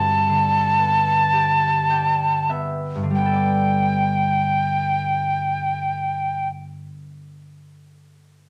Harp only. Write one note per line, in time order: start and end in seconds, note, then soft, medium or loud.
0.00 2.94 G2 medium
0.00 1.00 A3 medium
0.00 0.84 C4 soft
0.00 0.70 A4 medium
0.29 3.02 D3 soft
0.78 2.49 B3 soft
1.33 3.68 G4 soft
1.90 4.70 D4 soft
1.90 3.45 G5 soft
2.49 3.17 B3 soft
2.49 4.22 E5 soft
2.95 6.85 G2 soft
3.03 6.93 D3 soft
3.10 6.67 G3 soft
3.18 6.51 B3 soft
3.26 6.59 A4 soft
3.33 6.66 D5 soft